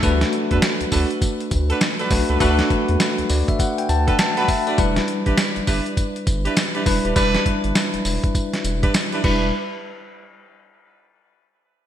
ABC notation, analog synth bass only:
X:1
M:4/4
L:1/16
Q:"Swing 16ths" 1/4=101
K:Em
V:1 name="Analog synth bass" clef=bass
D,,2 z E,, z D,, D,, z3 D,,2 z2 B,,, ^C,, | D,,2 z E,, z D,, D,, z3 D,,2 z4 | E,,,2 z A,,, z G,,, G,,, z3 G,,,2 z2 E,,, ^D,,, | E,,,2 z G,,, z E,,, E,,, z3 E,,,2 z2 E,,,2 |
z16 |]